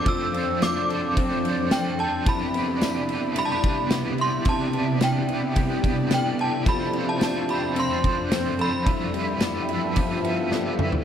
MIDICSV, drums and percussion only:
0, 0, Header, 1, 2, 480
1, 0, Start_track
1, 0, Key_signature, 0, "major"
1, 0, Tempo, 550459
1, 53, Time_signature, 4, 2, 24, 8
1, 9627, End_track
2, 0, Start_track
2, 0, Title_t, "Drums"
2, 54, Note_on_c, 9, 36, 106
2, 54, Note_on_c, 9, 51, 64
2, 141, Note_off_c, 9, 36, 0
2, 142, Note_off_c, 9, 51, 0
2, 299, Note_on_c, 9, 51, 45
2, 386, Note_off_c, 9, 51, 0
2, 539, Note_on_c, 9, 51, 49
2, 540, Note_on_c, 9, 54, 61
2, 544, Note_on_c, 9, 38, 99
2, 627, Note_off_c, 9, 51, 0
2, 627, Note_off_c, 9, 54, 0
2, 631, Note_off_c, 9, 38, 0
2, 787, Note_on_c, 9, 51, 45
2, 874, Note_off_c, 9, 51, 0
2, 1020, Note_on_c, 9, 36, 82
2, 1021, Note_on_c, 9, 51, 61
2, 1107, Note_off_c, 9, 36, 0
2, 1109, Note_off_c, 9, 51, 0
2, 1264, Note_on_c, 9, 51, 46
2, 1351, Note_off_c, 9, 51, 0
2, 1492, Note_on_c, 9, 51, 66
2, 1494, Note_on_c, 9, 38, 104
2, 1496, Note_on_c, 9, 54, 69
2, 1579, Note_off_c, 9, 51, 0
2, 1581, Note_off_c, 9, 38, 0
2, 1583, Note_off_c, 9, 54, 0
2, 1734, Note_on_c, 9, 51, 35
2, 1822, Note_off_c, 9, 51, 0
2, 1974, Note_on_c, 9, 51, 62
2, 1975, Note_on_c, 9, 36, 111
2, 2061, Note_off_c, 9, 51, 0
2, 2062, Note_off_c, 9, 36, 0
2, 2216, Note_on_c, 9, 51, 45
2, 2303, Note_off_c, 9, 51, 0
2, 2454, Note_on_c, 9, 51, 49
2, 2454, Note_on_c, 9, 54, 62
2, 2458, Note_on_c, 9, 38, 100
2, 2541, Note_off_c, 9, 51, 0
2, 2541, Note_off_c, 9, 54, 0
2, 2545, Note_off_c, 9, 38, 0
2, 2691, Note_on_c, 9, 51, 44
2, 2779, Note_off_c, 9, 51, 0
2, 2928, Note_on_c, 9, 51, 71
2, 3015, Note_off_c, 9, 51, 0
2, 3172, Note_on_c, 9, 36, 87
2, 3173, Note_on_c, 9, 51, 45
2, 3259, Note_off_c, 9, 36, 0
2, 3261, Note_off_c, 9, 51, 0
2, 3405, Note_on_c, 9, 51, 63
2, 3407, Note_on_c, 9, 38, 109
2, 3409, Note_on_c, 9, 54, 70
2, 3492, Note_off_c, 9, 51, 0
2, 3494, Note_off_c, 9, 38, 0
2, 3496, Note_off_c, 9, 54, 0
2, 3647, Note_on_c, 9, 51, 35
2, 3734, Note_off_c, 9, 51, 0
2, 3880, Note_on_c, 9, 51, 64
2, 3887, Note_on_c, 9, 36, 112
2, 3967, Note_off_c, 9, 51, 0
2, 3974, Note_off_c, 9, 36, 0
2, 4127, Note_on_c, 9, 51, 43
2, 4214, Note_off_c, 9, 51, 0
2, 4366, Note_on_c, 9, 51, 52
2, 4366, Note_on_c, 9, 54, 64
2, 4370, Note_on_c, 9, 38, 106
2, 4453, Note_off_c, 9, 51, 0
2, 4454, Note_off_c, 9, 54, 0
2, 4458, Note_off_c, 9, 38, 0
2, 4609, Note_on_c, 9, 51, 45
2, 4697, Note_off_c, 9, 51, 0
2, 4848, Note_on_c, 9, 51, 72
2, 4852, Note_on_c, 9, 36, 88
2, 4935, Note_off_c, 9, 51, 0
2, 4939, Note_off_c, 9, 36, 0
2, 5091, Note_on_c, 9, 36, 87
2, 5095, Note_on_c, 9, 51, 49
2, 5178, Note_off_c, 9, 36, 0
2, 5183, Note_off_c, 9, 51, 0
2, 5325, Note_on_c, 9, 51, 70
2, 5327, Note_on_c, 9, 38, 103
2, 5329, Note_on_c, 9, 54, 66
2, 5412, Note_off_c, 9, 51, 0
2, 5414, Note_off_c, 9, 38, 0
2, 5416, Note_off_c, 9, 54, 0
2, 5573, Note_on_c, 9, 51, 38
2, 5660, Note_off_c, 9, 51, 0
2, 5810, Note_on_c, 9, 36, 108
2, 5810, Note_on_c, 9, 51, 61
2, 5897, Note_off_c, 9, 36, 0
2, 5897, Note_off_c, 9, 51, 0
2, 6046, Note_on_c, 9, 51, 41
2, 6133, Note_off_c, 9, 51, 0
2, 6286, Note_on_c, 9, 51, 50
2, 6287, Note_on_c, 9, 54, 65
2, 6291, Note_on_c, 9, 38, 92
2, 6374, Note_off_c, 9, 51, 0
2, 6374, Note_off_c, 9, 54, 0
2, 6378, Note_off_c, 9, 38, 0
2, 6530, Note_on_c, 9, 51, 47
2, 6617, Note_off_c, 9, 51, 0
2, 6768, Note_on_c, 9, 51, 63
2, 6855, Note_off_c, 9, 51, 0
2, 7012, Note_on_c, 9, 36, 85
2, 7015, Note_on_c, 9, 51, 45
2, 7099, Note_off_c, 9, 36, 0
2, 7102, Note_off_c, 9, 51, 0
2, 7251, Note_on_c, 9, 51, 67
2, 7252, Note_on_c, 9, 38, 106
2, 7255, Note_on_c, 9, 54, 72
2, 7338, Note_off_c, 9, 51, 0
2, 7340, Note_off_c, 9, 38, 0
2, 7342, Note_off_c, 9, 54, 0
2, 7489, Note_on_c, 9, 51, 38
2, 7577, Note_off_c, 9, 51, 0
2, 7731, Note_on_c, 9, 36, 102
2, 7731, Note_on_c, 9, 51, 66
2, 7818, Note_off_c, 9, 36, 0
2, 7818, Note_off_c, 9, 51, 0
2, 7969, Note_on_c, 9, 51, 45
2, 8057, Note_off_c, 9, 51, 0
2, 8200, Note_on_c, 9, 51, 52
2, 8201, Note_on_c, 9, 54, 60
2, 8205, Note_on_c, 9, 38, 106
2, 8287, Note_off_c, 9, 51, 0
2, 8288, Note_off_c, 9, 54, 0
2, 8292, Note_off_c, 9, 38, 0
2, 8447, Note_on_c, 9, 51, 45
2, 8534, Note_off_c, 9, 51, 0
2, 8684, Note_on_c, 9, 51, 73
2, 8692, Note_on_c, 9, 36, 81
2, 8771, Note_off_c, 9, 51, 0
2, 8779, Note_off_c, 9, 36, 0
2, 8934, Note_on_c, 9, 51, 46
2, 9021, Note_off_c, 9, 51, 0
2, 9170, Note_on_c, 9, 38, 59
2, 9257, Note_off_c, 9, 38, 0
2, 9408, Note_on_c, 9, 45, 92
2, 9495, Note_off_c, 9, 45, 0
2, 9526, Note_on_c, 9, 43, 99
2, 9613, Note_off_c, 9, 43, 0
2, 9627, End_track
0, 0, End_of_file